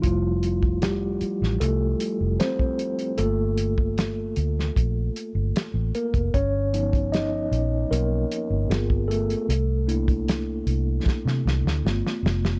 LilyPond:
<<
  \new Staff \with { instrumentName = "Tine electric piano" } { \time 4/4 \key f \major \tempo 4 = 76 <f f'>4 <g g'>4 <a a'>4 <c' c''>4 | a'2. r8 <bes bes'>8 | <cis' cis''>4 <dis' dis''>4 <ais ais'>4. <a a'>8~ | <a a'>4. r2 r8 | }
  \new Staff \with { instrumentName = "Tine electric piano" } { \time 4/4 \key f \major <g a e'>4. r2 r8 | <a bes f'>8 r2. r8 | r8 <f b dis'>4. r4 <b f' aes'>4 | r8 <a bes d' e'>8 r2 <a b f'>4 | }
  \new Staff \with { instrumentName = "Fingered electric bass" } { \clef bass \time 4/4 \key f \major f,,4. r16 a,,16 c,8 r16 f,,16 r4 | g,,4. d,8 bes,,8 r16 g,,16 r16 a,,16 r16 f,,16 | g,,4. ais,,8 b,,8 r16 g,,16 g,,4 | c,4. c,8 r16 c16 c,16 d,16 g,,16 r16 f,,8 | }
  \new DrumStaff \with { instrumentName = "Drums" } \drummode { \time 4/4 <hh bd>8 hh16 bd16 <hh sn>8 hh16 sn16 hh8 hh8 <hh sn>16 bd16 hh16 hh16 | hh8 hh16 bd16 <hh sn>8 hh16 sn16 <hh bd>8 hh8 <hh sn>8 hh16 <hh bd>16 | <hh bd>8 hh16 <hh bd>16 <hh sn>8 hh8 hh8 hh8 <hh sn>16 bd16 hh16 hh16 | hh8 hh16 <hh bd>16 <hh sn>8 hh8 <bd sn>16 sn16 sn16 sn16 sn16 sn16 sn16 sn16 | }
>>